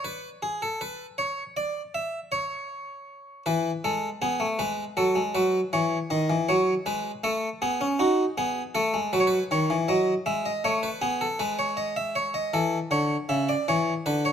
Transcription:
0.04 B4
0.42 G#4
0.62 A4
0.81 B4
1.18 C#5
1.57 D5
1.95 E5
2.32 C#5
3.46 E3 B4
3.84 G#3 A4
4.22 B3 G#4
4.40 A3
4.59 G#3 B4
4.97 F#3 A4
5.15 G#3
5.35 F#3 B4
5.73 E3 C#5
6.10 D#3 D#5
6.30 E3
6.49 F#3 C#5
6.86 G#3 B4
7.24 A3 A4
7.62 B3 G#4
7.81 C#4
7.99 D#4 F#4
8.38 B3 G#4
8.75 A3 A4
8.94 G#3
9.13 F#3 B4
9.20 C#5
9.27 B4
9.51 D#3 C#5
9.70 E3
9.88 F#3 D#5
10.26 G#3 E5
10.45 D#5
10.64 A3 C#5
10.83 B4
11.01 B3 G#4
11.21 A4
11.39 G#3 B4
11.59 C#5
11.77 D#5
11.96 E5
12.15 C#5
12.34 D#5
12.54 E3 A4
12.91 D3 C#5
13.29 C#3 E5
13.49 D5
13.68 E3 C#5
14.06 D3 B4
14.25 C#5

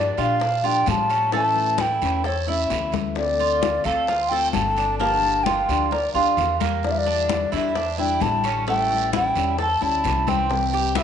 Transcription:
Already playing: G2 F3 A#3 D4 G4 D5
0.18 A#2 F3 A#3 D4 F4 G4 F5, high bongo, high conga, short guiro
0.40 D4, muted steel-string acoustic guitar stroke, high bongo, high conga, long guiro
0.63 F3 A#3 D4 F4 G4 G5, high bongo, high conga
0.86 A2 F3 D4 G4 A5, high bongo, low bongo, high conga, short guiro
1.09 C#4, high conga, short guiro
1.32 E3 A3 C#4 E4 A5, high bongo, high conga, long guiro
1.56 high bongo, high conga
1.78 E3 A3 C#4 E4 G5, high bongo, high conga, short guiro
2.02 E2 A3 C#4 E4, high bongo, high conga, short guiro
2.24 A4 C#5, muted steel-string acoustic guitar stroke, high bongo, high conga, long guiro
2.47 A3 C#4 E4 E5, high bongo, high conga
2.70 D2 E3 A3 C#4 E4, high bongo, low bongo, high conga, short guiro
2.92 high conga, short guiro
3.15 D3 A3 C4 F4 D5, high bongo, high conga, long guiro
3.39 F4, high bongo, high conga
3.62 D3 A3 C4 F4, high bongo, high conga, short guiro
3.84 D2 A3 C4 F4 A4 F5, high bongo, high conga, short guiro
4.07 F4, muted steel-string acoustic guitar stroke, high bongo, high conga, long guiro
4.29 A3 C4 F4 A4 G5, high bongo, high conga
4.52 G1 D3 A3 C4 F4 A5, high bongo, low bongo, high conga, short guiro
4.76 D4, high conga, short guiro
4.98 D3 F3 A#3 D4 G4 A5, high bongo, high conga, long guiro
5.22 high bongo, high conga
5.44 F3 A#3 D4 F4 G5, high bongo, high conga, short guiro
5.48 G4
5.69 D2 F3 A#3 D4 G4, high bongo, high conga, short guiro
5.91 A#4 D5, muted steel-string acoustic guitar stroke, high bongo, high conga, long guiro
6.14 D2 F3 A#3 D4 F4 G4 F5, high bongo, high conga
6.37 E2 A#3 D4 G4, high bongo, low bongo, high conga, short guiro
6.60 A#3, high conga, short guiro
6.83 D3 G3 D4 E4 D5, high bongo, high conga, long guiro
6.91 E5
6.98 D5
7.06 D4, high bongo, high conga
7.29 D3 G3 D4 E4, high bongo, high conga, short guiro
7.52 E2 G3 D4 E4 E5, high bongo, high conga, short guiro
7.75 D4, muted steel-string acoustic guitar stroke, high bongo, high conga, long guiro
7.98 G3 D4 E4 G5, high bongo, high conga
8.20 A1 D3 G3 D4 E4 A5, high bongo, low bongo, high conga, short guiro
8.44 C#4, high conga, short guiro
8.67 E3 G3 A3 C#4 E4 G5, high bongo, high conga, long guiro
8.91 high bongo, high conga
9.13 E3 G3 C#4 E4 G5, high bongo, high conga, short guiro
9.35 E2 G3 C#4 E4, high bongo, high conga, short guiro
9.58 A4 A5, muted steel-string acoustic guitar stroke, high bongo, high conga, long guiro
9.81 D2 G3 C#4 E4 A5, high bongo, high conga
10.04 C2 E3 G3 C#4 E4, high bongo, low bongo, high conga, short guiro
10.27 C4 G5, high conga, short guiro
10.50 C3 E3 G3 C4 E4, high bongo, high conga, long guiro
10.73 G4, high bongo, high conga
10.95 E3 G3 C4 E4 E5, high bongo, high conga, short guiro

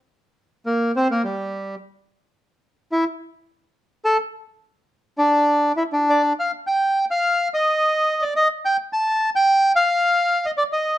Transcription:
0.66 A#3
0.96 C4
1.11 A#3
1.24 G3
2.92 E4
4.05 A4
5.18 D4
5.77 E4
5.93 D4
6.10 D5
6.39 F5
6.67 G5
7.11 F5
7.54 D#5
8.22 D5
8.36 D#5
8.65 G5
8.93 A5
9.36 G5
9.76 F5
10.46 D#5
10.58 D5
10.73 D#5

